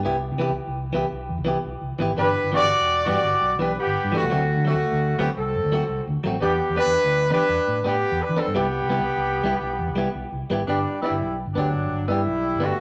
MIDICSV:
0, 0, Header, 1, 5, 480
1, 0, Start_track
1, 0, Key_signature, 1, "major"
1, 0, Tempo, 354191
1, 62, Time_signature, 12, 3, 24, 8
1, 17348, End_track
2, 0, Start_track
2, 0, Title_t, "Horn section"
2, 0, Program_c, 0, 61
2, 2948, Note_on_c, 0, 71, 91
2, 2950, Note_on_c, 0, 62, 77
2, 3393, Note_off_c, 0, 71, 0
2, 3394, Note_off_c, 0, 62, 0
2, 3447, Note_on_c, 0, 66, 77
2, 3457, Note_on_c, 0, 74, 108
2, 4106, Note_off_c, 0, 66, 0
2, 4112, Note_off_c, 0, 74, 0
2, 4139, Note_on_c, 0, 66, 81
2, 4165, Note_on_c, 0, 74, 106
2, 4811, Note_off_c, 0, 66, 0
2, 4825, Note_off_c, 0, 74, 0
2, 4878, Note_on_c, 0, 62, 64
2, 4898, Note_on_c, 0, 71, 82
2, 5094, Note_off_c, 0, 62, 0
2, 5105, Note_off_c, 0, 71, 0
2, 5124, Note_on_c, 0, 59, 66
2, 5153, Note_on_c, 0, 67, 88
2, 5561, Note_off_c, 0, 59, 0
2, 5576, Note_off_c, 0, 67, 0
2, 5609, Note_on_c, 0, 57, 69
2, 5629, Note_on_c, 0, 66, 85
2, 6266, Note_off_c, 0, 57, 0
2, 6277, Note_off_c, 0, 66, 0
2, 6321, Note_on_c, 0, 57, 68
2, 6343, Note_on_c, 0, 66, 86
2, 6982, Note_off_c, 0, 57, 0
2, 6993, Note_off_c, 0, 66, 0
2, 7017, Note_on_c, 0, 59, 61
2, 7035, Note_on_c, 0, 67, 73
2, 7126, Note_off_c, 0, 59, 0
2, 7140, Note_off_c, 0, 67, 0
2, 7263, Note_on_c, 0, 60, 60
2, 7278, Note_on_c, 0, 69, 76
2, 8167, Note_off_c, 0, 60, 0
2, 8175, Note_off_c, 0, 69, 0
2, 8707, Note_on_c, 0, 67, 91
2, 8711, Note_on_c, 0, 59, 72
2, 9150, Note_off_c, 0, 67, 0
2, 9152, Note_off_c, 0, 59, 0
2, 9170, Note_on_c, 0, 62, 74
2, 9183, Note_on_c, 0, 71, 107
2, 9844, Note_off_c, 0, 62, 0
2, 9851, Note_off_c, 0, 71, 0
2, 9926, Note_on_c, 0, 62, 84
2, 9928, Note_on_c, 0, 71, 104
2, 10583, Note_off_c, 0, 62, 0
2, 10584, Note_off_c, 0, 71, 0
2, 10641, Note_on_c, 0, 67, 91
2, 10652, Note_on_c, 0, 59, 73
2, 11110, Note_off_c, 0, 67, 0
2, 11115, Note_off_c, 0, 59, 0
2, 11127, Note_on_c, 0, 62, 72
2, 11130, Note_on_c, 0, 71, 88
2, 11337, Note_on_c, 0, 60, 68
2, 11343, Note_on_c, 0, 69, 88
2, 11353, Note_off_c, 0, 62, 0
2, 11355, Note_off_c, 0, 71, 0
2, 11578, Note_off_c, 0, 60, 0
2, 11581, Note_off_c, 0, 69, 0
2, 11589, Note_on_c, 0, 67, 88
2, 11591, Note_on_c, 0, 59, 67
2, 13930, Note_off_c, 0, 67, 0
2, 13931, Note_off_c, 0, 59, 0
2, 14460, Note_on_c, 0, 62, 79
2, 14466, Note_on_c, 0, 55, 62
2, 14907, Note_off_c, 0, 62, 0
2, 14910, Note_off_c, 0, 55, 0
2, 14931, Note_on_c, 0, 64, 73
2, 14935, Note_on_c, 0, 55, 57
2, 15383, Note_off_c, 0, 64, 0
2, 15385, Note_off_c, 0, 55, 0
2, 15639, Note_on_c, 0, 62, 78
2, 15654, Note_on_c, 0, 54, 64
2, 16321, Note_off_c, 0, 62, 0
2, 16329, Note_off_c, 0, 54, 0
2, 16365, Note_on_c, 0, 55, 69
2, 16369, Note_on_c, 0, 64, 88
2, 17096, Note_off_c, 0, 55, 0
2, 17098, Note_off_c, 0, 64, 0
2, 17116, Note_on_c, 0, 57, 75
2, 17118, Note_on_c, 0, 66, 91
2, 17348, Note_off_c, 0, 57, 0
2, 17348, Note_off_c, 0, 66, 0
2, 17348, End_track
3, 0, Start_track
3, 0, Title_t, "Clean electric guitar"
3, 0, Program_c, 1, 27
3, 63, Note_on_c, 1, 59, 92
3, 76, Note_on_c, 1, 64, 92
3, 79, Note_on_c, 1, 67, 88
3, 207, Note_off_c, 1, 59, 0
3, 213, Note_off_c, 1, 64, 0
3, 215, Note_off_c, 1, 67, 0
3, 520, Note_on_c, 1, 52, 60
3, 537, Note_on_c, 1, 59, 67
3, 553, Note_on_c, 1, 64, 61
3, 562, Note_on_c, 1, 67, 72
3, 676, Note_off_c, 1, 52, 0
3, 684, Note_off_c, 1, 59, 0
3, 692, Note_off_c, 1, 64, 0
3, 697, Note_off_c, 1, 67, 0
3, 1258, Note_on_c, 1, 52, 66
3, 1277, Note_on_c, 1, 59, 62
3, 1288, Note_on_c, 1, 64, 73
3, 1305, Note_on_c, 1, 67, 71
3, 1405, Note_off_c, 1, 52, 0
3, 1414, Note_off_c, 1, 59, 0
3, 1420, Note_off_c, 1, 64, 0
3, 1428, Note_off_c, 1, 67, 0
3, 1960, Note_on_c, 1, 52, 65
3, 1980, Note_on_c, 1, 59, 66
3, 1992, Note_on_c, 1, 64, 65
3, 2009, Note_on_c, 1, 67, 72
3, 2116, Note_off_c, 1, 52, 0
3, 2126, Note_off_c, 1, 59, 0
3, 2132, Note_off_c, 1, 64, 0
3, 2141, Note_off_c, 1, 67, 0
3, 2693, Note_on_c, 1, 52, 61
3, 2711, Note_on_c, 1, 59, 67
3, 2730, Note_on_c, 1, 64, 68
3, 2738, Note_on_c, 1, 67, 71
3, 2843, Note_off_c, 1, 52, 0
3, 2852, Note_off_c, 1, 59, 0
3, 2861, Note_off_c, 1, 64, 0
3, 2865, Note_off_c, 1, 67, 0
3, 2937, Note_on_c, 1, 52, 70
3, 2950, Note_on_c, 1, 59, 79
3, 2954, Note_on_c, 1, 62, 77
3, 2967, Note_on_c, 1, 67, 83
3, 3085, Note_off_c, 1, 52, 0
3, 3091, Note_off_c, 1, 59, 0
3, 3093, Note_off_c, 1, 62, 0
3, 3100, Note_off_c, 1, 67, 0
3, 3410, Note_on_c, 1, 52, 49
3, 3426, Note_on_c, 1, 59, 59
3, 3444, Note_on_c, 1, 62, 59
3, 3458, Note_on_c, 1, 67, 58
3, 3561, Note_off_c, 1, 52, 0
3, 3569, Note_off_c, 1, 59, 0
3, 3578, Note_off_c, 1, 62, 0
3, 3585, Note_off_c, 1, 67, 0
3, 4149, Note_on_c, 1, 52, 55
3, 4168, Note_on_c, 1, 59, 56
3, 4170, Note_on_c, 1, 62, 67
3, 4192, Note_on_c, 1, 67, 56
3, 4291, Note_off_c, 1, 52, 0
3, 4300, Note_off_c, 1, 59, 0
3, 4301, Note_off_c, 1, 62, 0
3, 4312, Note_off_c, 1, 67, 0
3, 4867, Note_on_c, 1, 52, 57
3, 4883, Note_on_c, 1, 59, 57
3, 4901, Note_on_c, 1, 62, 62
3, 4905, Note_on_c, 1, 67, 63
3, 5009, Note_off_c, 1, 52, 0
3, 5017, Note_off_c, 1, 59, 0
3, 5026, Note_off_c, 1, 62, 0
3, 5028, Note_off_c, 1, 67, 0
3, 5583, Note_on_c, 1, 52, 62
3, 5605, Note_on_c, 1, 59, 52
3, 5615, Note_on_c, 1, 62, 70
3, 5625, Note_on_c, 1, 67, 57
3, 5727, Note_off_c, 1, 52, 0
3, 5738, Note_off_c, 1, 59, 0
3, 5743, Note_off_c, 1, 62, 0
3, 5748, Note_off_c, 1, 67, 0
3, 5826, Note_on_c, 1, 54, 73
3, 5848, Note_on_c, 1, 57, 80
3, 5853, Note_on_c, 1, 66, 78
3, 5858, Note_on_c, 1, 60, 88
3, 5969, Note_off_c, 1, 54, 0
3, 5980, Note_off_c, 1, 57, 0
3, 5982, Note_off_c, 1, 66, 0
3, 5985, Note_off_c, 1, 60, 0
3, 6299, Note_on_c, 1, 54, 56
3, 6327, Note_on_c, 1, 57, 52
3, 6342, Note_on_c, 1, 60, 58
3, 6349, Note_on_c, 1, 66, 59
3, 6445, Note_off_c, 1, 54, 0
3, 6459, Note_off_c, 1, 57, 0
3, 6466, Note_off_c, 1, 60, 0
3, 6470, Note_off_c, 1, 66, 0
3, 7033, Note_on_c, 1, 54, 56
3, 7046, Note_on_c, 1, 57, 60
3, 7057, Note_on_c, 1, 60, 64
3, 7075, Note_on_c, 1, 66, 68
3, 7172, Note_off_c, 1, 54, 0
3, 7178, Note_off_c, 1, 57, 0
3, 7184, Note_off_c, 1, 60, 0
3, 7193, Note_off_c, 1, 66, 0
3, 7752, Note_on_c, 1, 54, 57
3, 7765, Note_on_c, 1, 57, 55
3, 7773, Note_on_c, 1, 60, 62
3, 7790, Note_on_c, 1, 66, 64
3, 7891, Note_off_c, 1, 54, 0
3, 7898, Note_off_c, 1, 57, 0
3, 7901, Note_off_c, 1, 60, 0
3, 7910, Note_off_c, 1, 66, 0
3, 8453, Note_on_c, 1, 54, 67
3, 8479, Note_on_c, 1, 57, 66
3, 8492, Note_on_c, 1, 60, 74
3, 8502, Note_on_c, 1, 66, 70
3, 8601, Note_off_c, 1, 54, 0
3, 8614, Note_off_c, 1, 57, 0
3, 8621, Note_off_c, 1, 60, 0
3, 8625, Note_off_c, 1, 66, 0
3, 8680, Note_on_c, 1, 59, 76
3, 8696, Note_on_c, 1, 62, 82
3, 8711, Note_on_c, 1, 67, 88
3, 8835, Note_off_c, 1, 59, 0
3, 8843, Note_off_c, 1, 62, 0
3, 8850, Note_off_c, 1, 67, 0
3, 9165, Note_on_c, 1, 59, 53
3, 9185, Note_on_c, 1, 62, 58
3, 9203, Note_on_c, 1, 67, 66
3, 9316, Note_off_c, 1, 59, 0
3, 9326, Note_off_c, 1, 62, 0
3, 9336, Note_off_c, 1, 67, 0
3, 9900, Note_on_c, 1, 59, 61
3, 9911, Note_on_c, 1, 62, 60
3, 9943, Note_on_c, 1, 67, 69
3, 10044, Note_off_c, 1, 59, 0
3, 10049, Note_off_c, 1, 62, 0
3, 10066, Note_off_c, 1, 67, 0
3, 10629, Note_on_c, 1, 59, 58
3, 10649, Note_on_c, 1, 62, 60
3, 10671, Note_on_c, 1, 67, 61
3, 10768, Note_off_c, 1, 59, 0
3, 10778, Note_off_c, 1, 62, 0
3, 10789, Note_off_c, 1, 67, 0
3, 11334, Note_on_c, 1, 59, 53
3, 11350, Note_on_c, 1, 62, 64
3, 11481, Note_off_c, 1, 59, 0
3, 11488, Note_off_c, 1, 62, 0
3, 11583, Note_on_c, 1, 55, 85
3, 11595, Note_on_c, 1, 59, 81
3, 11596, Note_on_c, 1, 64, 87
3, 11609, Note_on_c, 1, 67, 77
3, 11725, Note_off_c, 1, 55, 0
3, 11731, Note_off_c, 1, 59, 0
3, 11731, Note_off_c, 1, 64, 0
3, 11738, Note_off_c, 1, 67, 0
3, 12053, Note_on_c, 1, 55, 54
3, 12062, Note_on_c, 1, 59, 54
3, 12079, Note_on_c, 1, 64, 54
3, 12091, Note_on_c, 1, 67, 68
3, 12200, Note_off_c, 1, 55, 0
3, 12205, Note_off_c, 1, 59, 0
3, 12213, Note_off_c, 1, 64, 0
3, 12219, Note_off_c, 1, 67, 0
3, 12788, Note_on_c, 1, 55, 62
3, 12802, Note_on_c, 1, 59, 62
3, 12814, Note_on_c, 1, 64, 72
3, 12832, Note_on_c, 1, 67, 71
3, 12927, Note_off_c, 1, 55, 0
3, 12934, Note_off_c, 1, 59, 0
3, 12940, Note_off_c, 1, 64, 0
3, 12949, Note_off_c, 1, 67, 0
3, 13493, Note_on_c, 1, 55, 72
3, 13517, Note_on_c, 1, 59, 63
3, 13524, Note_on_c, 1, 64, 72
3, 13540, Note_on_c, 1, 67, 69
3, 13640, Note_off_c, 1, 55, 0
3, 13652, Note_off_c, 1, 59, 0
3, 13656, Note_off_c, 1, 64, 0
3, 13664, Note_off_c, 1, 67, 0
3, 14231, Note_on_c, 1, 55, 58
3, 14244, Note_on_c, 1, 59, 69
3, 14264, Note_on_c, 1, 64, 70
3, 14274, Note_on_c, 1, 67, 63
3, 14369, Note_off_c, 1, 55, 0
3, 14376, Note_off_c, 1, 59, 0
3, 14386, Note_off_c, 1, 64, 0
3, 14391, Note_off_c, 1, 67, 0
3, 14468, Note_on_c, 1, 59, 67
3, 14491, Note_on_c, 1, 62, 70
3, 14496, Note_on_c, 1, 67, 82
3, 14608, Note_off_c, 1, 59, 0
3, 14620, Note_off_c, 1, 62, 0
3, 14622, Note_off_c, 1, 67, 0
3, 14941, Note_on_c, 1, 59, 50
3, 14963, Note_on_c, 1, 62, 53
3, 14987, Note_on_c, 1, 67, 54
3, 15085, Note_off_c, 1, 59, 0
3, 15096, Note_off_c, 1, 62, 0
3, 15108, Note_off_c, 1, 67, 0
3, 15659, Note_on_c, 1, 59, 52
3, 15687, Note_on_c, 1, 62, 57
3, 15705, Note_on_c, 1, 67, 57
3, 15805, Note_off_c, 1, 59, 0
3, 15819, Note_off_c, 1, 62, 0
3, 15828, Note_off_c, 1, 67, 0
3, 16373, Note_on_c, 1, 59, 55
3, 16400, Note_on_c, 1, 62, 58
3, 16423, Note_on_c, 1, 67, 58
3, 16523, Note_off_c, 1, 59, 0
3, 16536, Note_off_c, 1, 62, 0
3, 16548, Note_off_c, 1, 67, 0
3, 17076, Note_on_c, 1, 59, 57
3, 17100, Note_on_c, 1, 62, 55
3, 17126, Note_on_c, 1, 67, 58
3, 17235, Note_off_c, 1, 59, 0
3, 17247, Note_off_c, 1, 62, 0
3, 17260, Note_off_c, 1, 67, 0
3, 17348, End_track
4, 0, Start_track
4, 0, Title_t, "Fingered electric bass"
4, 0, Program_c, 2, 33
4, 62, Note_on_c, 2, 36, 96
4, 402, Note_off_c, 2, 36, 0
4, 430, Note_on_c, 2, 48, 81
4, 653, Note_off_c, 2, 48, 0
4, 673, Note_on_c, 2, 36, 75
4, 781, Note_off_c, 2, 36, 0
4, 911, Note_on_c, 2, 36, 78
4, 1247, Note_off_c, 2, 36, 0
4, 1288, Note_on_c, 2, 36, 88
4, 1389, Note_off_c, 2, 36, 0
4, 1519, Note_on_c, 2, 35, 88
4, 1738, Note_off_c, 2, 35, 0
4, 1750, Note_on_c, 2, 40, 73
4, 1860, Note_off_c, 2, 40, 0
4, 1869, Note_on_c, 2, 36, 92
4, 2093, Note_off_c, 2, 36, 0
4, 2235, Note_on_c, 2, 35, 90
4, 2343, Note_off_c, 2, 35, 0
4, 2458, Note_on_c, 2, 36, 75
4, 2574, Note_off_c, 2, 36, 0
4, 2700, Note_on_c, 2, 32, 83
4, 2928, Note_off_c, 2, 32, 0
4, 2943, Note_on_c, 2, 31, 86
4, 3169, Note_off_c, 2, 31, 0
4, 3302, Note_on_c, 2, 31, 82
4, 3416, Note_off_c, 2, 31, 0
4, 3540, Note_on_c, 2, 31, 83
4, 3655, Note_off_c, 2, 31, 0
4, 3800, Note_on_c, 2, 28, 76
4, 4131, Note_off_c, 2, 28, 0
4, 4152, Note_on_c, 2, 43, 81
4, 4261, Note_off_c, 2, 43, 0
4, 4381, Note_on_c, 2, 31, 84
4, 4495, Note_off_c, 2, 31, 0
4, 4622, Note_on_c, 2, 35, 85
4, 4849, Note_off_c, 2, 35, 0
4, 4863, Note_on_c, 2, 35, 84
4, 5089, Note_off_c, 2, 35, 0
4, 5226, Note_on_c, 2, 31, 85
4, 5338, Note_off_c, 2, 31, 0
4, 5472, Note_on_c, 2, 43, 92
4, 5581, Note_off_c, 2, 43, 0
4, 5724, Note_on_c, 2, 36, 86
4, 5814, Note_off_c, 2, 36, 0
4, 5822, Note_on_c, 2, 38, 104
4, 6162, Note_off_c, 2, 38, 0
4, 6179, Note_on_c, 2, 50, 82
4, 6407, Note_off_c, 2, 50, 0
4, 6416, Note_on_c, 2, 38, 83
4, 6532, Note_off_c, 2, 38, 0
4, 6664, Note_on_c, 2, 38, 77
4, 7002, Note_off_c, 2, 38, 0
4, 7020, Note_on_c, 2, 38, 80
4, 7134, Note_off_c, 2, 38, 0
4, 7272, Note_on_c, 2, 36, 95
4, 7493, Note_off_c, 2, 36, 0
4, 7521, Note_on_c, 2, 42, 76
4, 7625, Note_off_c, 2, 42, 0
4, 7639, Note_on_c, 2, 38, 93
4, 7857, Note_off_c, 2, 38, 0
4, 7981, Note_on_c, 2, 36, 93
4, 8094, Note_off_c, 2, 36, 0
4, 8233, Note_on_c, 2, 38, 85
4, 8340, Note_off_c, 2, 38, 0
4, 8474, Note_on_c, 2, 33, 86
4, 8690, Note_off_c, 2, 33, 0
4, 8698, Note_on_c, 2, 40, 97
4, 8925, Note_off_c, 2, 40, 0
4, 9072, Note_on_c, 2, 40, 84
4, 9180, Note_off_c, 2, 40, 0
4, 9300, Note_on_c, 2, 40, 82
4, 9413, Note_off_c, 2, 40, 0
4, 9545, Note_on_c, 2, 38, 79
4, 9881, Note_off_c, 2, 38, 0
4, 9904, Note_on_c, 2, 52, 89
4, 10015, Note_off_c, 2, 52, 0
4, 10148, Note_on_c, 2, 40, 93
4, 10257, Note_off_c, 2, 40, 0
4, 10399, Note_on_c, 2, 45, 84
4, 10616, Note_off_c, 2, 45, 0
4, 10640, Note_on_c, 2, 45, 80
4, 10856, Note_off_c, 2, 45, 0
4, 10995, Note_on_c, 2, 40, 87
4, 11101, Note_off_c, 2, 40, 0
4, 11237, Note_on_c, 2, 52, 88
4, 11341, Note_off_c, 2, 52, 0
4, 11476, Note_on_c, 2, 43, 80
4, 11581, Note_off_c, 2, 43, 0
4, 11590, Note_on_c, 2, 36, 104
4, 11924, Note_off_c, 2, 36, 0
4, 11951, Note_on_c, 2, 48, 77
4, 12171, Note_off_c, 2, 48, 0
4, 12182, Note_on_c, 2, 36, 79
4, 12294, Note_off_c, 2, 36, 0
4, 12425, Note_on_c, 2, 36, 78
4, 12761, Note_off_c, 2, 36, 0
4, 12796, Note_on_c, 2, 36, 89
4, 12901, Note_off_c, 2, 36, 0
4, 13028, Note_on_c, 2, 35, 94
4, 13249, Note_off_c, 2, 35, 0
4, 13263, Note_on_c, 2, 40, 83
4, 13374, Note_off_c, 2, 40, 0
4, 13383, Note_on_c, 2, 36, 87
4, 13607, Note_off_c, 2, 36, 0
4, 13755, Note_on_c, 2, 35, 85
4, 13861, Note_off_c, 2, 35, 0
4, 13989, Note_on_c, 2, 36, 75
4, 14098, Note_off_c, 2, 36, 0
4, 14224, Note_on_c, 2, 32, 83
4, 14448, Note_off_c, 2, 32, 0
4, 14459, Note_on_c, 2, 31, 85
4, 14686, Note_off_c, 2, 31, 0
4, 15043, Note_on_c, 2, 31, 88
4, 15161, Note_off_c, 2, 31, 0
4, 15169, Note_on_c, 2, 35, 75
4, 15514, Note_off_c, 2, 35, 0
4, 15529, Note_on_c, 2, 31, 78
4, 15648, Note_off_c, 2, 31, 0
4, 15663, Note_on_c, 2, 38, 83
4, 15889, Note_off_c, 2, 38, 0
4, 15895, Note_on_c, 2, 31, 80
4, 16125, Note_off_c, 2, 31, 0
4, 16133, Note_on_c, 2, 31, 79
4, 16364, Note_off_c, 2, 31, 0
4, 16382, Note_on_c, 2, 43, 87
4, 16605, Note_off_c, 2, 43, 0
4, 16614, Note_on_c, 2, 35, 82
4, 16977, Note_on_c, 2, 31, 79
4, 16997, Note_off_c, 2, 35, 0
4, 17207, Note_off_c, 2, 31, 0
4, 17348, End_track
5, 0, Start_track
5, 0, Title_t, "Muted clean electric guitar strokes"
5, 48, Note_on_c, 9, 29, 87
5, 184, Note_off_c, 9, 29, 0
5, 11369, Note_on_c, 9, 29, 70
5, 11504, Note_off_c, 9, 29, 0
5, 17348, End_track
0, 0, End_of_file